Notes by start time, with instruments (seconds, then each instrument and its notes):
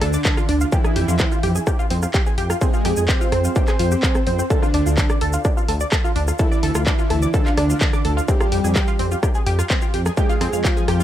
Already playing: supersaw synth D3 D4
0.01 detuned saw bass D2, synth arpeggio sound A4 A5, cross-stick, open hi-hat
0.13 synth arpeggio sound D5 D6, cabasa
0.25 synth arpeggio sound A4 A5, kick, clap, cabasa
0.37 synth arpeggio sound F4 F5, cross-stick, cabasa
0.49 detuned saw bass D2, synth arpeggio sound D4 D5, open hi-hat
0.61 synth arpeggio sound F4 F5, cabasa
0.72 supersaw synth E3 E4, synth arpeggio sound G4 G5, kick, cabasa
0.84 synth arpeggio sound G#4 G#5, cross-stick, cabasa
0.96 detuned saw bass F2, synth arpeggio sound G4 G5, open hi-hat
1.08 detuned saw bass F2, synth arpeggio sound F4 F5, cabasa
1.19 synth arpeggio sound C4 C5, kick, cross-stick, clap, cabasa
1.32 synth arpeggio sound F4 F5, cabasa
1.43 detuned saw bass F2, synth arpeggio sound G4 G5, open hi-hat
1.55 synth arpeggio sound G#4 G#5, cabasa
1.67 synth arpeggio sound G4 G5, kick, cross-stick, cabasa
1.79 synth arpeggio sound F4 F5, cabasa
1.90 detuned saw bass F2, synth arpeggio sound C4 C5, open hi-hat
2.02 synth arpeggio sound F4 F5, cross-stick, cabasa
2.14 synth arpeggio sound G4 G5, kick, clap, cabasa
2.26 synth arpeggio sound G#4 G#5, cabasa
2.38 detuned saw bass F2, synth arpeggio sound G4 G5, open hi-hat
2.50 synth arpeggio sound F4 F5, cross-stick, cabasa
2.61 supersaw synth G#3 G#4, synth arpeggio sound C4 C5, kick, cabasa
2.73 synth arpeggio sound F4 F5, cabasa
2.85 detuned saw bass F2, synth arpeggio sound G4 G5, cross-stick, open hi-hat
2.96 detuned saw bass F2, synth arpeggio sound G#4 G#5, cabasa
3.09 supersaw synth C4 C5, synth arpeggio sound G4 G5, kick, clap, cabasa
3.21 synth arpeggio sound F4 F5, cabasa
3.32 detuned saw bass F2, synth arpeggio sound C4 C5, cross-stick, open hi-hat
3.44 synth arpeggio sound F4 F5, cabasa
3.56 supersaw synth C4 C5, synth arpeggio sound G4 G5, kick, cabasa
3.67 synth arpeggio sound G#4 G#5, cross-stick, clap, cabasa
3.79 detuned saw bass F2, synth arpeggio sound F4 F5, open hi-hat
3.91 synth arpeggio sound G4 G5, cabasa
4.03 synth arpeggio sound G#4 G#5, kick, clap, cabasa
4.15 synth arpeggio sound C4 C5, cross-stick, cabasa
4.27 detuned saw bass F2, synth arpeggio sound C4 C5, open hi-hat
4.39 synth arpeggio sound C4 C5, cabasa
4.50 supersaw synth D3 D4, synth arpeggio sound A4 A5, kick, cabasa
4.62 synth arpeggio sound F4 F5, cross-stick, cabasa
4.74 detuned saw bass D2, synth arpeggio sound D4 D5, open hi-hat
4.86 detuned saw bass D2, synth arpeggio sound F4 F5, cabasa
4.98 synth arpeggio sound A4 A5, kick, clap, cabasa
5.10 synth arpeggio sound D5 D6, cross-stick, cabasa
5.21 detuned saw bass D2, synth arpeggio sound A4 A5, open hi-hat
5.33 synth arpeggio sound F4 F5, cabasa
5.44 synth arpeggio sound D4 D5, kick, cross-stick, cabasa
5.57 synth arpeggio sound F4 F5, cabasa
5.68 detuned saw bass D2, synth arpeggio sound A4 A5, open hi-hat
5.80 synth arpeggio sound D5 D6, cabasa
5.92 synth arpeggio sound A4 A5, kick, cross-stick, clap, cabasa
6.04 synth arpeggio sound F4 F5, cabasa
6.16 detuned saw bass D2, synth arpeggio sound D4 D5, open hi-hat
6.28 synth arpeggio sound F4 F5, cross-stick, cabasa
6.39 supersaw synth E3 E4, synth arpeggio sound A4 A5, kick, cabasa
6.52 synth arpeggio sound D5 D6, cabasa
6.63 detuned saw bass D2, synth arpeggio sound A4 A5, open hi-hat
6.75 detuned saw bass D2, synth arpeggio sound F4 F5, cross-stick, cabasa
6.87 supersaw synth E3 E4, synth arpeggio sound D4 D5, kick, clap, cabasa
6.99 synth arpeggio sound F4 F5, cabasa
7.10 detuned saw bass D2, synth arpeggio sound A4 A5, cross-stick, open hi-hat
7.22 synth arpeggio sound D5 D6, cabasa
7.34 supersaw synth D3 D4, synth arpeggio sound A4 A5, kick, cabasa
7.46 synth arpeggio sound F4 F5, clap, cabasa
7.57 detuned saw bass D2, synth arpeggio sound D4 D5, cross-stick, open hi-hat
7.70 synth arpeggio sound F4 F5, cabasa
7.81 synth arpeggio sound A4 A5, kick, clap, cabasa
7.93 synth arpeggio sound D5 D6, cross-stick, cabasa
8.05 detuned saw bass D2, synth arpeggio sound A4 A5, open hi-hat
8.17 synth arpeggio sound F4 F5, cabasa
8.28 supersaw synth G3 G4, synth arpeggio sound C4 C5, kick, cabasa
8.41 synth arpeggio sound F4 F5, cross-stick, cabasa
8.52 detuned saw bass F2, synth arpeggio sound G4 G5, open hi-hat
8.64 detuned saw bass F2, synth arpeggio sound G#4 G#5, cabasa
8.76 synth arpeggio sound G4 G5, kick, cross-stick, clap, cabasa
8.88 synth arpeggio sound F4 F5, cabasa
8.99 detuned saw bass F2, synth arpeggio sound C4 C5, open hi-hat
9.11 synth arpeggio sound F4 F5, cabasa
9.23 synth arpeggio sound G4 G5, kick, cross-stick, cabasa
9.35 synth arpeggio sound G#4 G#5, cabasa
9.46 detuned saw bass F2, synth arpeggio sound G4 G5, open hi-hat
9.59 synth arpeggio sound F4 F5, cross-stick, cabasa
9.70 synth arpeggio sound C4 C5, kick, clap, cabasa
9.82 synth arpeggio sound F4 F5, cabasa
9.94 detuned saw bass F2, synth arpeggio sound G4 G5, open hi-hat
10.06 synth arpeggio sound G#4 G#5, cross-stick, cabasa
10.17 supersaw synth G#3 G#4, synth arpeggio sound G4 G5, kick, cabasa
10.29 synth arpeggio sound F4 F5, cabasa
10.41 detuned saw bass F2, synth arpeggio sound C4 C5, cross-stick, open hi-hat
10.53 detuned saw bass F2, synth arpeggio sound F4 F5, cabasa
10.64 supersaw synth F3 F4, synth arpeggio sound G4 G5, kick, clap, cabasa
10.77 synth arpeggio sound G#4 G#5, cabasa
10.88 detuned saw bass F2, synth arpeggio sound G4 G5, cross-stick, open hi-hat
11.00 synth arpeggio sound F4 F5, cabasa